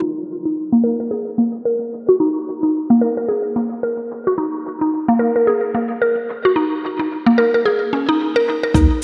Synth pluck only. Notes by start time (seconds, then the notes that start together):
0.02 D#4
0.45 D#4
0.72 A#3
0.84 A#4
1.00 A#4
1.11 G#4
1.38 A#3
1.65 A#4
2.09 F#4
2.20 D#4
2.63 D#4
2.90 A#3
3.01 A#4
3.17 A#4
3.29 G#4
3.56 A#3
3.83 A#4
4.27 F#4
4.38 D#4
4.81 D#4
5.08 A#3
5.19 A#4
5.36 A#4
5.47 G#4
5.75 A#3
6.02 A#4
6.45 F#4
6.56 D#4
6.99 D#4
7.26 A#3
7.38 A#4
7.54 A#4
7.66 G#4
7.93 C#4
8.09 D#4
8.36 A#4
8.63 A#4
8.75 D#4